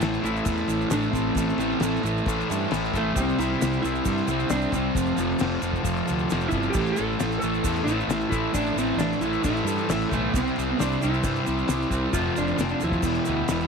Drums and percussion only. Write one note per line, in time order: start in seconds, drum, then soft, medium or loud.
0.01 snare loud
0.01 crash medium
0.01 shaker loud
0.14 shaker soft
0.24 crash medium
0.24 shaker medium
0.36 shaker soft
0.45 kick loud
0.45 crash loud
0.45 shaker loud
0.57 shaker soft
0.67 crash medium
0.67 shaker medium
0.81 shaker soft
0.90 snare loud
0.90 crash medium
0.90 shaker loud
1.03 shaker soft
1.13 kick medium
1.13 crash medium
1.13 shaker medium
1.35 kick loud
1.35 crash medium
1.35 shaker loud
1.49 shaker soft
1.58 crash medium
1.58 shaker medium
1.69 snare soft
1.80 snare loud
1.80 crash loud
1.80 shaker loud
1.96 shaker soft
2.03 crash medium
2.03 shaker medium
2.18 shaker soft
2.26 kick loud
2.26 crash loud
2.26 shaker loud
2.41 shaker soft
2.50 crash medium
2.50 shaker medium
2.71 snare loud
2.71 crash loud
2.71 shaker loud
2.85 shaker soft
2.93 kick medium
2.93 crash medium
2.93 shaker medium
3.16 kick loud
3.16 crash medium
3.16 shaker loud
3.29 shaker soft
3.38 crash medium
3.38 shaker medium
3.51 snare soft
3.61 snare loud
3.61 crash medium
3.61 shaker loud
3.73 shaker soft
3.83 crash medium
3.83 shaker medium
3.95 shaker soft
4.05 kick loud
4.05 crash loud
4.05 shaker loud
4.18 shaker soft
4.28 crash medium
4.28 shaker medium
4.39 shaker soft
4.49 snare loud
4.49 crash medium
4.49 shaker loud
4.62 shaker soft
4.72 kick medium
4.72 crash medium
4.72 shaker medium
4.95 kick loud
4.95 crash medium
4.95 shaker loud
5.06 shaker soft
5.17 crash medium
5.17 shaker medium
5.30 snare soft
5.39 snare loud
5.39 crash loud
5.39 shaker loud
5.62 crash medium
5.62 shaker medium
5.73 kick medium
5.73 shaker soft
5.84 kick loud
5.84 crash loud
5.84 shaker medium
5.96 shaker soft
6.08 crash medium
6.08 shaker medium
6.19 shaker soft
6.30 snare loud
6.30 crash loud
6.30 shaker medium
6.41 shaker soft
6.51 kick medium
6.51 crash medium
6.51 shaker medium
6.63 shaker soft
6.74 kick loud
6.74 crash medium
6.74 shaker loud
6.86 shaker soft
6.96 crash medium
6.96 shaker medium
7.11 snare soft
7.19 snare loud
7.19 crash medium
7.19 shaker loud
7.32 shaker soft
7.42 crash medium
7.42 shaker medium
7.54 shaker soft
7.64 kick loud
7.64 crash loud
7.64 shaker loud
7.76 shaker soft
7.88 crash medium
7.88 shaker medium
8.00 shaker soft
8.10 snare loud
8.10 crash medium
8.10 shaker loud
8.21 shaker soft
8.32 kick medium
8.32 crash medium
8.32 shaker medium
8.54 kick loud
8.54 crash medium
8.54 shaker loud
8.66 shaker soft
8.78 crash medium
8.78 shaker medium
8.99 snare loud
8.99 crash loud
8.99 shaker loud
9.12 shaker soft
9.21 crash medium
9.21 shaker medium
9.33 shaker soft
9.44 kick loud
9.44 crash loud
9.44 shaker medium
9.56 shaker soft
9.67 crash medium
9.67 shaker medium
9.78 shaker soft
9.89 snare loud
9.89 crash loud
9.89 shaker medium
10.01 shaker soft
10.11 kick medium
10.11 crash medium
10.11 shaker medium
10.33 kick loud
10.33 crash medium
10.33 shaker loud
10.47 shaker soft
10.56 crash medium
10.56 shaker medium
10.79 snare loud
10.79 crash medium
10.79 shaker loud
10.92 shaker soft
11.01 crash medium
11.01 shaker medium
11.14 shaker soft
11.23 kick loud
11.23 crash medium
11.23 shaker medium
11.36 shaker soft
11.46 crash medium
11.46 shaker medium
11.59 shaker soft
11.68 snare loud
11.68 crash medium
11.68 shaker loud
11.82 shaker soft
11.91 kick medium
11.91 crash medium
11.91 shaker medium
12.13 kick loud
12.13 crash medium
12.13 shaker loud
12.36 crash medium
12.36 shaker medium
12.47 snare soft
12.47 shaker soft
12.59 snare loud
12.59 crash medium
12.59 shaker loud
12.69 shaker soft
12.80 crash medium
12.80 shaker medium
12.92 kick medium
12.92 shaker soft
13.02 kick loud
13.02 crash loud
13.02 shaker loud
13.14 shaker soft
13.24 crash medium
13.24 shaker medium
13.48 snare loud
13.48 crash loud
13.48 shaker loud
13.61 shaker soft